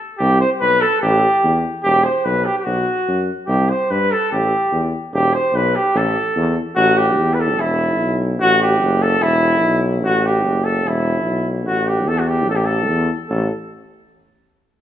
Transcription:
0.17 C2 G4
0.40 C5
0.60 B1 B4
0.81 A4
1.02 A1 G4
1.44 E2
1.83 E1 G4
2.04 C5
2.25 B1 B4
2.45 G4
2.58 G4
2.64 B1 F#4
3.08 F#2
3.46 C2 G4
3.70 C5
3.90 G2 B4
4.12 A4
4.32 A1 G4
4.72 E2
5.13 E1 G4
5.34 C5
5.53 B1 B4
5.75 G4
5.94 A1 A4
6.36 E2
6.75 A1 F#4
6.97 G4
7.18 E2
7.34 B4
7.40 A4
7.58 E1 E4
7.99 B1
8.40 A1 F#4
8.62 G4
8.81 F#1
9.02 A4
9.21 E1 E4
9.63 B1
10.04 A1 F#4
10.26 G4
10.45 F#1
10.64 A4
10.84 E1 E4
11.25 B1
11.66 A1 F#4
11.87 G4
12.06 E2 A4
12.19 F#4
12.28 G4
12.48 A1 A4
12.56 G4
12.65 A4
12.88 E2
13.29 A1 A4

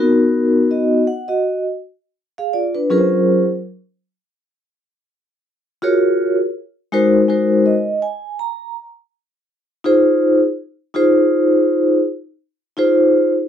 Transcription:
Already playing: B3 D#4
0.00 F#4 A#4
0.71 F#4 D#5
1.07 F#5
1.28 F#4 D#5
2.38 G#4 F5
2.53 F4 D5
2.75 D4 B4
2.90 F#3 C#4 F4 G#4 A#4 B4
2.98 C5
5.82 F4 F#4 G#4 A#4 C#5
6.92 G#3 D#4 F#4 A#4 C5
7.28 G#3 D#4 F#4 A#4 C5
7.66 D#5
8.02 G#5
8.39 A#5
9.84 D#4 F4 G#4 C5
10.94 D#4 F4 G#4 C5
12.77 D#4 F4 G#4 C5

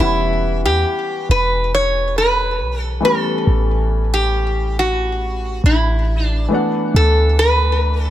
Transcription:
Already playing: E3 G3
0.00 E1 B3 C#4 E4 F#5
0.64 E2 G4
1.29 E1 B4
1.75 C#5
2.18 B4
2.60 B1
2.82 A4
3.00 E3 A3 B3
3.05 G3 C#4 A4
3.47 A1
4.14 G4
4.79 F#4
5.64 A1 E4
6.25 D4
6.48 E3 A3 B3
6.53 D4 F#5
6.94 D2 A4
7.39 B4
8.03 A4

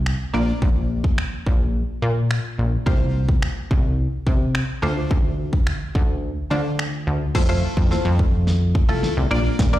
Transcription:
Already playing: C2 F4 C5
0.06 finger snap
0.34 A#1 A#3 D4 F4 D5
0.62 A#1, kick
1.04 kick
1.18 finger snap
1.46 A#1, kick
2.02 A#2
2.31 finger snap
2.59 A#1
2.86 C2 A#3 F4 G4 C5, kick
3.29 kick
3.42 finger snap
3.71 C2, kick
4.27 C3, kick
4.55 finger snap
4.82 D2 A3 D4 F4 C5
5.11 D2, kick
5.53 kick
5.67 finger snap
5.95 D2, kick
6.50 D3 A3 D4 F4 C5
6.79 finger snap
7.07 D2
7.35 F2 A3 E4 F4 C5, kick, snare, crash
7.49 A3 E4 F4 C5
7.77 F2, kick
7.91 A3 E4 F4 C5, snare
8.05 F2
8.19 kick
8.47 snare
8.75 C2, kick
8.89 A3 E4 F4 A4
9.03 snare
9.17 C2
9.31 A#1 A#3 D4 F4 D5
9.59 A#1, kick, snare, closed hi-hat
9.73 A#3 D4 F4 D5

